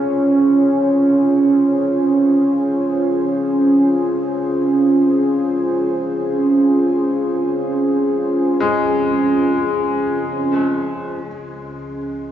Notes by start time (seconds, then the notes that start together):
Already playing: C2 C#4 F4 G#4 C5
8.60 G#3
11.24 C#2 C#3 C#4
11.84 G#4